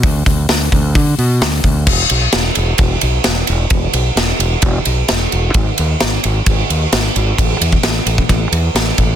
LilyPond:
<<
  \new Staff \with { instrumentName = "Fingered electric bass" } { \clef bass \time 4/4 \key e \major \tempo 4 = 131 d,8 d,8 d,8 d,8 d8 b,8 d,8 d,8 | e,,8 b,,8 e,,8 e,,8 e,,8 b,,8 e,,8 e,,8 | e,,8 b,,8 e,,8 e,,8 e,,8 b,,8 e,,8 e,,8 | gis,,8 dis,8 gis,,8 gis,,8 gis,,8 dis,8 gis,,8 gis,,8 |
a,,8 e,8 a,,8 a,,8 a,,8 e,8 a,,8 a,,8 | }
  \new DrumStaff \with { instrumentName = "Drums" } \drummode { \time 4/4 <hho bd>8 <hho bd>8 <hho sn>8 <hho bd>8 <hho bd>8 hho8 <hho sn>8 <hho bd>8 | <cymc bd>8 cymr8 <cymr sn>8 cymr8 <bd cymr>8 cymr8 <cymr sn>8 cymr8 | <bd cymr>8 cymr8 <cymr sn>8 cymr8 <bd cymr>8 cymr8 <cymr sn>8 cymr8 | <bd cymr>8 cymr8 <cymr sn>8 cymr8 <bd cymr>8 cymr8 <cymr sn>8 cymr8 |
<bd cymr>8 cymr16 bd16 <cymr sn>8 cymr16 bd16 <bd cymr>8 cymr8 <cymr sn>8 <bd cymr>8 | }
>>